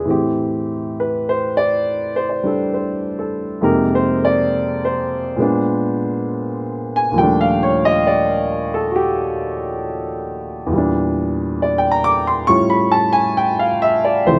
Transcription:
0.00 0.16 G#4 medium
0.05 3.61 A2 medium
0.05 3.62 E3 soft
0.05 3.62 C4 medium
0.10 3.62 G4 medium
1.00 1.27 B4 medium
1.29 1.56 C5 medium
1.57 2.11 D5 medium
2.16 2.73 C5 medium
2.29 2.91 D5 soft
2.44 3.61 G3 soft
2.44 3.62 D4 soft
2.44 3.17 A4 soft
2.74 3.44 C5 medium
3.19 3.80 A4 medium
3.61 5.39 F2 medium
3.61 5.39 C3 soft
3.61 5.37 G#3 medium
3.61 5.39 A#3 medium
3.61 5.39 D#4 soft
3.61 5.40 G4 medium
3.61 3.91 A#4 medium
3.95 4.22 C5 medium
4.25 4.78 D5 medium
4.85 5.67 C5 medium
5.36 7.12 A#2 medium
5.36 7.16 G#3 medium
5.36 7.17 B3 medium
5.42 7.17 D4 medium
6.96 7.13 G#5 medium
7.12 10.69 D#2 medium
7.12 10.69 A#2 medium
7.16 10.71 F3 medium
7.16 10.72 G3 medium
7.16 7.46 G5 medium
7.20 10.73 A3 medium
7.20 10.74 D4 medium
7.41 7.73 F5 medium
7.63 7.83 C#5 medium
7.85 8.02 D#5 medium
8.07 8.76 D5 medium
8.74 8.90 A4 medium
8.92 8.98 F#4 medium
8.96 9.31 G4 medium
10.66 12.46 E2 medium
10.66 12.48 A#2 medium
10.74 12.47 G3 medium
10.78 12.52 D4 medium
11.62 11.80 D5 medium
11.78 11.88 G5 medium
11.91 12.20 A#5 medium
12.04 12.26 D6 loud
12.27 12.44 C6 medium
12.47 14.26 A2 medium
12.47 14.26 G3 medium
12.47 14.26 C#4 medium
12.47 14.26 F4 medium
12.47 12.77 C#6 loud
12.70 13.03 B5 medium
12.92 13.14 A5 medium
13.13 13.31 G#5 medium
13.37 13.66 G5 medium
13.59 13.92 F5 medium
13.82 14.03 E5 medium
14.05 14.22 D5 medium
14.26 14.39 D2 medium
14.26 14.39 C3 soft
14.26 14.39 E3 medium
14.26 14.39 F3 soft
14.26 14.39 C5 medium

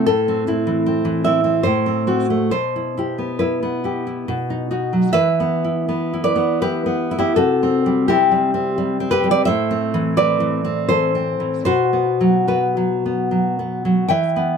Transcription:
0.06 1.63 A2 medium
0.06 1.22 A4 medium
0.28 0.46 C4 soft
0.47 0.85 C4 soft
0.47 1.25 E4 medium
0.67 1.04 E3 soft
0.86 1.25 C4 soft
1.05 1.66 E3 soft
1.24 1.43 C4 soft
1.24 1.63 E4 soft
1.24 1.63 E5 medium
1.44 1.66 C4 soft
1.63 2.50 A2 medium
1.63 2.48 C5 medium
1.86 2.06 C4 soft
2.07 2.30 C4 soft
2.07 2.49 F#4 soft
2.30 2.53 A3 soft
2.51 4.23 B2 medium
2.51 3.37 C5 medium
2.76 2.96 E4 soft
2.97 3.39 E4 soft
2.97 3.84 G4 soft
3.18 3.61 B3 soft
3.39 3.83 E4 soft
3.39 4.67 B4 medium
3.63 4.28 B3 soft
3.84 4.06 E4 soft
3.84 4.24 G4 soft
4.07 4.28 E4 soft
4.28 5.11 B2 medium
4.50 4.70 D#4 soft
4.71 5.08 D#4 soft
4.71 5.09 F#4 soft
4.93 5.13 F#3 soft
5.13 7.32 E3 medium
5.13 6.22 B4 medium
5.13 6.21 E5 loud
5.40 5.87 B3 soft
5.64 6.12 E4 soft
5.89 6.34 B3 soft
6.14 6.61 E4 medium
6.24 6.59 B4 medium
6.24 6.60 D5 medium
6.36 6.85 B3 soft
6.62 7.10 E4 medium
6.62 7.13 G4 medium
6.62 7.15 B4 medium
6.86 7.35 B3 soft
7.11 7.18 E4 medium
7.19 7.36 E4 medium
7.19 7.36 G4 medium
7.36 9.44 C3 medium
7.36 8.04 F#4 medium
7.36 8.05 A4 medium
7.63 8.08 C4 medium
7.86 8.30 G3 medium
8.08 8.53 C4 medium
8.08 9.10 E4 medium
8.08 9.09 G4 medium
8.31 8.77 G3 medium
8.54 8.99 C4 medium
8.78 9.23 G3 medium
9.00 9.48 C4 medium
9.11 9.29 G4 medium
9.11 9.30 B4 medium
9.24 9.48 G3 medium
9.31 9.46 B4 medium
9.31 9.45 D5 loud
9.45 11.62 A2 medium
9.45 10.13 C5 medium
9.45 10.13 E5 loud
9.71 10.16 C4 medium
9.94 10.39 E3 medium
10.17 10.63 C4 medium
10.17 10.85 B4 medium
10.17 10.86 D5 loud
10.40 10.88 E3 medium
10.65 11.14 C4 soft
10.89 11.39 E3 medium
10.89 11.63 A4 medium
10.89 11.63 C5 medium
11.15 11.67 C4 soft
11.40 11.66 E3 soft
11.65 14.04 B2 medium
11.65 12.44 F#4 medium
11.65 12.44 C5 medium
11.93 12.47 B3 soft
12.21 12.76 F#3 soft
12.48 13.04 B3 soft
12.48 13.65 F#4 soft
12.48 13.65 B4 medium
12.77 13.30 F#3 soft
13.06 13.58 B3 soft
13.31 13.84 F#3 soft
13.59 14.10 B3 soft
13.85 14.10 F#3 soft
14.08 14.57 E3 medium
14.08 14.57 E5 medium
14.08 14.57 G5 medium
14.36 14.57 B3 soft

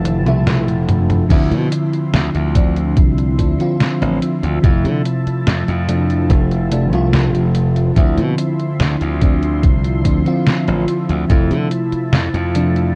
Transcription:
0.00 0.26 F1 medium
0.00 0.20 C3 medium
0.00 0.21 F3 medium
0.00 1.26 F3 medium
0.00 0.21 A3 medium
0.00 0.22 D4 medium
0.00 1.26 E5 medium
0.00 1.27 A5 loud
0.05 closed hi-hat medium
0.05 high tom medium
0.25 0.43 C2 medium
0.25 1.25 C3 medium
0.25 1.25 F3 medium
0.25 1.26 A3 medium
0.25 1.26 E4 loud
0.25 closed hi-hat soft
0.25 mid tom medium
0.46 0.68 C2 medium
0.46 snare loud
0.46 closed hi-hat medium
0.46 mid tom medium
0.68 1.24 F1 loud
0.68 closed hi-hat soft
0.89 closed hi-hat loud
0.89 mid tom loud
1.10 closed hi-hat soft
1.10 mid tom medium
1.29 1.53 D2 loud
1.29 2.50 D3 medium
1.29 2.50 F3 medium
1.29 12.95 F3 medium
1.29 2.51 C4 medium
1.29 2.51 E4 medium
1.29 7.93 E5 medium
1.29 4.60 C6 loud
1.29 kick loud
1.29 closed hi-hat medium
1.29 crash loud
1.51 1.68 B2 loud
1.51 closed hi-hat soft
1.72 closed hi-hat loud
1.93 closed hi-hat soft
2.14 2.31 D2 loud
2.14 snare loud
2.14 closed hi-hat medium
2.35 2.98 D2 medium
2.35 closed hi-hat soft
2.55 3.34 D3 medium
2.55 3.34 F3 medium
2.55 3.34 C4 medium
2.55 3.35 D4 medium
2.55 kick loud
2.55 closed hi-hat medium
2.76 closed hi-hat soft
2.97 3.38 C2 medium
2.97 kick loud
2.97 closed hi-hat medium
3.18 closed hi-hat soft
3.38 3.56 D2 medium
3.38 3.54 D3 medium
3.38 3.54 F3 medium
3.38 3.55 C4 medium
3.38 3.55 D4 medium
3.38 kick medium
3.38 closed hi-hat loud
3.58 4.58 D3 medium
3.58 4.58 F3 medium
3.58 4.59 C4 medium
3.58 4.59 F4 medium
3.58 closed hi-hat soft
3.80 snare loud
3.80 closed hi-hat medium
4.02 4.18 A1 medium
4.02 closed hi-hat soft
4.22 closed hi-hat loud
4.43 4.59 D2 medium
4.43 closed hi-hat soft
4.62 4.86 F2 loud
4.62 5.83 C3 medium
4.62 5.83 F3 medium
4.62 5.84 A3 medium
4.62 5.84 E4 medium
4.62 7.93 A5 loud
4.62 kick loud
4.62 closed hi-hat medium
4.84 5.01 D3 loud
4.84 closed hi-hat soft
5.05 closed hi-hat loud
5.26 muted slap bass stroke soft
5.26 closed hi-hat soft
5.47 5.64 F2 loud
5.47 snare loud
5.47 closed hi-hat medium
5.68 6.32 F2 medium
5.68 closed hi-hat soft
5.88 6.67 C3 medium
5.88 6.67 F3 medium
5.88 6.68 A3 medium
5.88 6.68 D4 medium
5.88 closed hi-hat loud
6.10 closed hi-hat soft
6.30 6.93 F1 medium
6.30 kick loud
6.30 closed hi-hat medium
6.52 closed hi-hat soft
6.71 6.87 C3 medium
6.71 6.88 F3 medium
6.71 6.88 A3 medium
6.71 6.88 D4 medium
6.71 closed hi-hat loud
6.91 7.10 C2 medium
6.91 7.91 C3 medium
6.91 7.92 F3 medium
6.91 7.92 A3 medium
6.91 7.93 F4 loud
6.91 closed hi-hat soft
7.13 7.35 C2 medium
7.13 snare loud
7.13 closed hi-hat medium
7.35 7.90 F1 loud
7.35 closed hi-hat soft
7.55 closed hi-hat loud
7.76 closed hi-hat soft
7.95 8.19 D2 loud
7.95 9.16 D3 medium
7.95 9.17 F3 medium
7.95 9.17 C4 medium
7.95 9.17 E4 loud
7.95 12.95 E5 medium
7.95 11.27 C6 loud
7.95 kick loud
7.95 closed hi-hat medium
8.18 8.34 B2 loud
8.18 closed hi-hat soft
8.38 closed hi-hat loud
8.60 closed hi-hat soft
8.80 8.97 D2 loud
8.80 snare loud
8.80 closed hi-hat medium
9.01 9.65 D2 medium
9.01 closed hi-hat soft
9.21 10.00 D3 medium
9.21 10.01 F3 medium
9.21 10.01 C4 medium
9.21 10.01 D4 medium
9.21 kick loud
9.21 closed hi-hat medium
9.43 closed hi-hat soft
9.63 10.05 C2 medium
9.63 kick loud
9.63 closed hi-hat medium
9.84 closed hi-hat soft
10.04 10.22 D2 medium
10.04 10.21 D3 medium
10.04 10.21 F3 medium
10.04 10.21 C4 medium
10.04 10.21 D4 medium
10.04 kick medium
10.04 closed hi-hat loud
10.25 11.24 D3 medium
10.25 11.25 F3 medium
10.25 11.25 C4 medium
10.25 11.26 F4 loud
10.25 closed hi-hat soft
10.47 snare loud
10.47 closed hi-hat medium
10.68 10.84 A1 medium
10.68 closed hi-hat soft
10.88 closed hi-hat loud
11.09 11.26 D2 medium
11.09 closed hi-hat soft
11.29 11.52 F2 loud
11.29 12.49 C3 medium
11.29 12.50 F3 medium
11.29 12.50 A3 medium
11.29 12.51 E4 loud
11.29 12.95 A5 loud
11.29 kick loud
11.29 closed hi-hat medium
11.51 11.68 D3 loud
11.51 closed hi-hat soft
11.71 closed hi-hat medium
11.92 muted slap bass stroke soft
11.92 closed hi-hat soft
12.13 12.30 F2 loud
12.13 snare loud
12.13 closed hi-hat medium
12.34 12.95 F2 medium
12.34 closed hi-hat soft
12.55 12.95 C3 medium
12.55 12.95 F3 medium
12.55 12.95 A3 medium
12.55 12.95 D4 medium
12.55 closed hi-hat medium
12.76 closed hi-hat soft

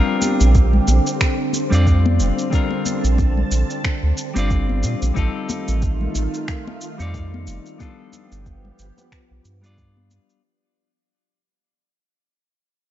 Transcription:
0.00 5.13 D3 medium
0.00 1.67 G3 medium
0.00 1.68 C4 medium
0.00 5.12 C4 medium
0.00 1.69 D4 medium
0.00 1.69 F4 medium
0.00 2.50 G4 medium
0.00 1.70 A#4 medium
0.22 high conga medium
0.22 shaker medium
0.41 0.80 A#1 medium
0.41 muted conga soft
0.41 shaker soft
0.55 kick loud
0.55 shaker soft
0.73 low conga medium
0.88 1.00 A#1 medium
0.88 muted conga medium
0.88 shaker medium
1.07 shaker soft
1.21 finger snap medium
1.21 kick medium
1.21 shaker soft
1.53 muted conga soft
1.53 shaker medium
1.70 2.21 F2 medium
1.70 2.48 G3 medium
1.70 2.49 C4 medium
1.70 2.49 D4 medium
1.70 2.50 F4 medium
1.70 shaker soft
1.75 2.50 D5 loud
1.87 kick loud
1.87 shaker soft
2.06 muted conga medium
2.06 high conga medium
2.19 2.32 F1 medium
2.19 shaker medium
2.39 shaker soft
2.50 4.31 G3 medium
2.50 4.32 C4 medium
2.50 4.32 D4 medium
2.50 4.33 F4 medium
2.50 5.14 A5 medium
2.50 kick loud
2.50 shaker soft
2.55 4.34 A#4 medium
2.70 muted conga medium
2.86 high conga medium
2.86 shaker medium
3.04 3.44 A#1 medium
3.04 shaker soft
3.18 kick loud
3.18 muted conga medium
3.18 shaker soft
3.37 low conga medium
3.52 3.64 A#1 medium
3.52 shaker medium
3.70 shaker soft
3.84 finger snap medium
3.84 kick loud
3.84 muted conga soft
3.84 shaker soft
4.03 4.13 D2 medium
4.18 shaker medium
4.34 4.85 G1 medium
4.34 5.12 G3 medium
4.34 5.13 C4 medium
4.34 5.13 D4 medium
4.34 5.14 F4 medium
4.34 muted conga medium
4.34 shaker soft
4.39 5.14 D5 medium
4.50 kick loud
4.50 shaker soft
4.69 high conga medium
4.83 4.96 A#2 medium
4.83 shaker medium
5.02 5.12 A#1 medium
5.02 muted conga soft
5.02 shaker soft
5.14 5.29 A1 medium
5.14 7.78 D#3 medium
5.14 6.95 G3 medium
5.14 7.78 A3 medium
5.14 6.96 C4 medium
5.14 6.96 D#4 medium
5.14 7.78 F4 loud
5.14 6.97 F4 medium
5.14 kick medium
5.14 shaker soft
5.19 6.97 A4 medium
5.49 muted conga medium
5.49 high conga medium
5.49 shaker medium
5.68 6.08 A1 medium
5.68 shaker soft
5.82 kick loud
5.82 shaker soft
6.01 low conga medium
6.15 6.28 A1 medium
6.15 muted conga soft
6.15 shaker medium
6.34 shaker soft
6.48 finger snap medium
6.48 kick loud
6.48 shaker soft
6.67 muted conga medium
6.81 shaker medium
6.98 7.49 F2 medium
6.98 7.76 G3 medium
6.98 7.76 C4 medium
6.98 7.77 D#4 medium
6.98 7.77 F4 medium
6.98 shaker soft
7.02 7.78 D5 medium
7.14 kick loud
7.14 shaker soft
7.34 muted conga soft
7.34 high conga medium
7.47 7.59 F1 medium
7.47 shaker medium
7.66 shaker soft
7.78 10.41 F3 medium
7.78 9.59 G3 medium
7.78 9.60 B3 medium
7.78 10.41 B3 medium
7.78 9.60 D4 medium
7.78 9.61 F4 medium
7.78 10.41 G4 medium
7.78 kick medium
7.78 muted conga medium
7.78 shaker soft
7.83 9.61 A4 medium
8.13 high conga medium
8.13 shaker medium
8.32 8.71 G1 medium
8.32 shaker soft
8.46 kick medium
8.46 muted conga soft
8.46 shaker soft
8.65 low conga medium
8.79 8.91 G1 medium
8.79 shaker medium
8.98 muted conga medium
8.98 shaker soft
9.12 finger snap medium
9.12 kick medium
9.12 shaker soft
9.31 9.40 B1 medium
9.45 10.19 G2 loud
9.45 shaker medium
9.62 10.39 G3 medium
9.62 10.40 B3 medium
9.62 10.40 D4 medium
9.62 10.41 F4 medium
9.62 muted conga soft
9.62 shaker soft
9.66 10.42 D5 medium
9.78 kick medium
9.78 shaker soft
9.97 high conga medium
10.11 muted conga medium
10.11 shaker medium
10.30 shaker soft

